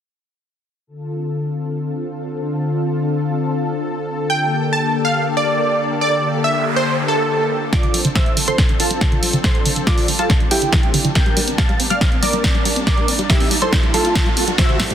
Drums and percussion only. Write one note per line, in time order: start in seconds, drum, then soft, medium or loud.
7.73 kick loud
7.73 snare soft
7.73 closed hi-hat medium
7.83 closed hi-hat soft
7.94 open hi-hat loud
8.05 closed hi-hat medium
8.15 kick loud
8.15 snare soft
8.15 closed hi-hat medium
8.26 closed hi-hat soft
8.37 open hi-hat loud
8.48 closed hi-hat medium
8.58 kick loud
8.58 snare soft
8.58 closed hi-hat medium
8.69 closed hi-hat soft
8.80 open hi-hat loud
8.91 closed hi-hat medium
9.01 kick loud
9.01 snare medium
9.01 closed hi-hat medium
9.12 closed hi-hat soft
9.23 open hi-hat loud
9.33 closed hi-hat medium
9.44 kick loud
9.44 snare medium
9.44 closed hi-hat medium
9.55 closed hi-hat soft
9.66 open hi-hat loud
9.76 closed hi-hat medium
9.87 kick loud
9.87 snare medium
9.87 closed hi-hat medium
9.98 open hi-hat medium
10.08 open hi-hat loud
10.19 closed hi-hat medium
10.30 kick loud
10.30 snare medium
10.30 closed hi-hat medium
10.40 closed hi-hat soft
10.51 open hi-hat loud
10.62 closed hi-hat medium
10.73 kick loud
10.73 snare medium
10.73 closed hi-hat medium
10.83 closed hi-hat soft
10.94 open hi-hat loud
11.05 closed hi-hat soft
11.15 kick loud
11.15 snare medium
11.15 closed hi-hat soft
11.26 closed hi-hat soft
11.37 open hi-hat loud
11.48 closed hi-hat medium
11.58 kick loud
11.58 snare medium
11.58 closed hi-hat soft
11.69 closed hi-hat soft
11.80 open hi-hat loud
11.90 closed hi-hat medium
12.01 kick loud
12.01 snare medium
12.01 closed hi-hat soft
12.12 closed hi-hat soft
12.23 open hi-hat loud
12.33 closed hi-hat medium
12.44 kick loud
12.44 snare medium
12.44 closed hi-hat medium
12.55 closed hi-hat soft
12.65 open hi-hat loud
12.76 closed hi-hat medium
12.87 kick loud
12.87 snare medium
12.87 closed hi-hat soft
12.98 closed hi-hat soft
13.08 open hi-hat loud
13.19 closed hi-hat medium
13.30 kick loud
13.30 snare medium
13.30 closed hi-hat soft
13.40 open hi-hat medium
13.51 open hi-hat loud
13.62 closed hi-hat soft
13.73 kick loud
13.73 snare medium
13.73 closed hi-hat soft
13.83 closed hi-hat soft
13.94 open hi-hat loud
14.05 closed hi-hat soft
14.15 kick loud
14.15 snare medium
14.15 closed hi-hat soft
14.26 closed hi-hat soft
14.37 open hi-hat loud
14.48 closed hi-hat soft
14.58 kick loud
14.58 snare medium
14.58 closed hi-hat medium
14.69 closed hi-hat soft
14.80 snare medium
14.80 open hi-hat loud
14.90 closed hi-hat medium